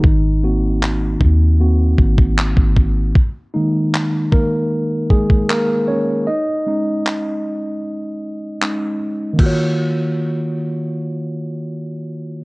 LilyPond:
<<
  \new Staff \with { instrumentName = "Tine electric piano" } { \time 4/4 \key ees \minor \tempo 4 = 77 << { <ees ees'>4. r2 r8 | r8 <ees ees'>4 <bes bes'>4 <aes aes'>8 <bes bes'>8 <des' des''>8 | <ees' ees''>2. r4 | <ees bes f' ges' des''>1 | } \\ { r8 <bes c' ges'>4. <bes c' ges'>8 r4. | r8 <aes bes>4. r2 | r8 <aes des' ees'>4. r4 <aes des' ees'>8 r8 | r1 | } >> }
  \new Staff \with { instrumentName = "808-style bass" } { \clef bass \time 4/4 \key ees \minor aes,,4. ees,4 aes,,8. aes,,8. | r1 | r1 | r1 | }
  \new DrumStaff \with { instrumentName = "Drums" } \drummode { \time 4/4 bd4 hc8 bd8 r8 bd16 bd16 hc16 bd16 bd8 | bd4 hc8 bd8 r8 bd16 bd16 hc4 | r4 hc4 r4 hc4 | <cymc bd>4 r4 r4 r4 | }
>>